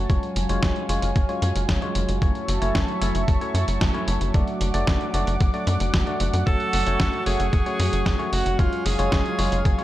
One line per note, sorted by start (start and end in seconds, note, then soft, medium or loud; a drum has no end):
0.00 6.43 F#3 medium
0.09 0.20 F#1 loud
0.09 0.46 G#3 medium
0.09 0.46 C#4 medium
0.09 0.46 F4 medium
0.09 2.20 C#5 medium
0.09 0.46 C#5 medium
0.09 2.20 F5 medium
0.09 2.20 G#5 medium
0.09 kick loud
0.09 closed hi-hat soft
0.23 closed hi-hat soft
0.36 0.47 F#1 medium
0.36 closed hi-hat medium
0.49 0.60 F#1 medium
0.49 0.86 G#3 medium
0.49 0.86 C#4 medium
0.49 0.86 F4 medium
0.49 0.86 C#5 loud
0.49 closed hi-hat soft
0.63 0.73 F#1 loud
0.63 kick loud
0.63 snare loud
0.63 closed hi-hat soft
0.76 closed hi-hat soft
0.89 1.00 F#1 medium
0.89 1.10 G#3 medium
0.89 1.10 C#4 medium
0.89 1.10 F4 medium
0.89 1.10 C#5 loud
0.89 closed hi-hat medium
1.02 1.13 F#1 medium
1.02 closed hi-hat soft
1.16 1.26 F#1 loud
1.16 kick loud
1.16 closed hi-hat medium
1.29 1.79 G#3 medium
1.29 1.79 C#4 medium
1.29 1.79 F4 medium
1.29 1.79 C#5 medium
1.29 closed hi-hat soft
1.42 1.53 F#2 medium
1.42 closed hi-hat medium
1.56 1.66 F#1 medium
1.56 closed hi-hat medium
1.69 1.79 F#1 loud
1.69 kick loud
1.69 snare loud
1.69 closed hi-hat medium
1.82 2.19 G#3 medium
1.82 2.19 C#4 medium
1.82 2.19 F4 medium
1.82 2.19 C#5 medium
1.82 closed hi-hat soft
1.95 2.06 F#1 medium
1.95 closed hi-hat medium
2.09 2.19 F#1 medium
2.09 closed hi-hat soft
2.22 2.32 F#1 loud
2.22 2.59 A3 medium
2.22 2.59 C#4 medium
2.22 2.59 E4 medium
2.22 2.59 C#5 medium
2.22 4.32 E5 medium
2.22 4.32 A5 medium
2.22 4.32 C#6 medium
2.22 kick loud
2.22 closed hi-hat soft
2.35 closed hi-hat soft
2.48 2.59 F#1 medium
2.48 closed hi-hat medium
2.61 2.72 F#1 medium
2.61 2.98 A3 medium
2.61 2.98 C#4 medium
2.61 2.98 E4 medium
2.61 2.98 C#5 loud
2.61 closed hi-hat soft
2.75 2.86 F#1 loud
2.75 kick loud
2.75 snare loud
2.75 closed hi-hat soft
2.88 closed hi-hat soft
3.01 3.12 F#1 medium
3.01 3.22 A3 medium
3.01 3.22 C#4 medium
3.01 3.22 E4 medium
3.01 3.22 C#5 loud
3.01 closed hi-hat medium
3.15 3.25 F#1 medium
3.15 closed hi-hat soft
3.28 3.39 F#1 loud
3.28 kick loud
3.28 closed hi-hat soft
3.41 3.91 A3 medium
3.41 3.91 C#4 medium
3.41 3.91 E4 medium
3.41 3.91 C#5 loud
3.41 closed hi-hat soft
3.54 3.65 F#2 medium
3.54 closed hi-hat medium
3.68 3.78 F#1 medium
3.68 closed hi-hat soft
3.81 3.92 F#1 loud
3.81 kick loud
3.81 snare loud
3.81 closed hi-hat soft
3.94 4.31 A3 medium
3.94 4.31 C#4 medium
3.94 4.31 E4 medium
3.94 4.31 C#5 medium
3.94 closed hi-hat soft
4.07 4.18 F#1 medium
4.07 closed hi-hat medium
4.21 4.31 F#1 medium
4.21 closed hi-hat soft
4.34 4.45 F#1 loud
4.34 4.71 A3 medium
4.34 4.71 D4 medium
4.34 4.71 F#4 medium
4.34 4.71 D5 medium
4.34 8.55 F#5 medium
4.34 6.45 D6 medium
4.34 kick loud
4.34 closed hi-hat soft
4.48 closed hi-hat soft
4.61 4.71 F#1 medium
4.61 closed hi-hat medium
4.74 4.85 F#1 medium
4.74 5.11 A3 medium
4.74 5.11 D4 medium
4.74 5.11 F#4 medium
4.74 5.11 D5 loud
4.74 closed hi-hat soft
4.87 4.98 F#1 loud
4.87 kick loud
4.87 snare loud
4.87 closed hi-hat soft
5.01 closed hi-hat soft
5.14 5.24 F#1 medium
5.14 5.35 A3 medium
5.14 5.35 D4 medium
5.14 5.35 F#4 medium
5.14 5.35 D5 loud
5.14 closed hi-hat medium
5.27 5.38 F#1 medium
5.27 closed hi-hat soft
5.40 5.51 F#1 loud
5.40 kick loud
5.40 closed hi-hat soft
5.54 6.04 A3 medium
5.54 6.04 D4 medium
5.54 6.04 F#4 medium
5.54 6.04 D5 medium
5.54 closed hi-hat soft
5.67 5.78 F#2 medium
5.67 closed hi-hat medium
5.80 5.91 F#1 medium
5.80 closed hi-hat soft
5.94 6.04 F#1 loud
5.94 kick loud
5.94 snare loud
5.94 closed hi-hat soft
6.07 6.44 A3 medium
6.07 6.44 D4 medium
6.07 6.44 F#4 medium
6.07 6.44 D5 medium
6.07 closed hi-hat soft
6.20 6.31 F#1 medium
6.20 closed hi-hat medium
6.34 6.44 F#2 medium
6.34 closed hi-hat soft
6.47 6.57 F#1 loud
6.47 9.84 F#3 medium
6.47 6.83 A3 medium
6.47 6.83 C#4 medium
6.47 6.83 F#4 medium
6.47 7.22 A4 loud
6.47 6.83 C#5 medium
6.47 8.57 C#6 medium
6.47 kick loud
6.47 closed hi-hat soft
6.60 closed hi-hat soft
6.73 6.84 F#1 medium
6.73 open hi-hat loud
6.86 6.97 F#1 medium
6.86 7.23 A3 medium
6.86 7.23 C#4 medium
6.86 7.23 F#4 medium
6.86 7.23 C#5 loud
6.86 closed hi-hat soft
7.00 7.10 F#1 loud
7.00 kick loud
7.00 snare loud
7.00 closed hi-hat soft
7.13 closed hi-hat soft
7.26 7.37 F#1 medium
7.26 7.47 A3 medium
7.26 7.47 C#4 medium
7.26 7.47 F#4 medium
7.26 8.29 G#4 loud
7.26 7.47 C#5 loud
7.26 open hi-hat medium
7.40 7.50 F#1 medium
7.40 closed hi-hat soft
7.53 7.64 F#1 loud
7.53 kick loud
7.53 closed hi-hat soft
7.66 8.16 A3 medium
7.66 8.16 C#4 medium
7.66 8.16 F#4 medium
7.66 8.16 C#5 loud
7.66 closed hi-hat soft
7.80 7.90 F#2 medium
7.80 open hi-hat loud
7.93 8.03 F#1 medium
7.93 closed hi-hat medium
8.06 8.17 F#1 medium
8.06 kick loud
8.06 snare loud
8.06 closed hi-hat medium
8.19 8.56 A3 medium
8.19 8.56 C#4 medium
8.19 8.56 F#4 medium
8.19 8.56 C#5 loud
8.19 closed hi-hat soft
8.33 8.43 F#1 medium
8.33 8.61 F#4 medium
8.33 open hi-hat medium
8.46 8.56 F#1 medium
8.46 closed hi-hat soft
8.59 8.70 F#1 loud
8.59 8.96 G#3 medium
8.59 8.96 C#4 medium
8.59 8.96 F4 medium
8.59 8.87 F4 medium
8.59 8.96 C#5 medium
8.59 9.84 C#5 medium
8.59 9.84 F5 medium
8.59 9.84 G#5 medium
8.59 kick loud
8.59 closed hi-hat soft
8.73 closed hi-hat soft
8.86 8.96 F#1 medium
8.86 9.84 G#4 loud
8.86 open hi-hat loud
8.99 9.09 F#1 medium
8.99 9.36 G#3 medium
8.99 9.35 C#4 medium
8.99 9.36 F4 medium
8.99 9.35 C#5 loud
8.99 closed hi-hat medium
9.12 9.23 F#1 loud
9.12 kick loud
9.12 snare loud
9.12 closed hi-hat soft
9.26 closed hi-hat soft
9.39 9.49 F#1 medium
9.39 9.59 G#3 medium
9.39 9.59 C#4 medium
9.39 9.59 F4 medium
9.39 9.59 C#5 loud
9.39 open hi-hat medium
9.52 9.63 F#1 medium
9.52 closed hi-hat soft
9.65 9.76 F#1 loud
9.65 kick loud
9.65 closed hi-hat medium
9.78 9.84 G#3 medium
9.78 9.84 C#4 medium
9.78 9.84 F4 medium
9.78 9.84 C#5 medium
9.78 closed hi-hat soft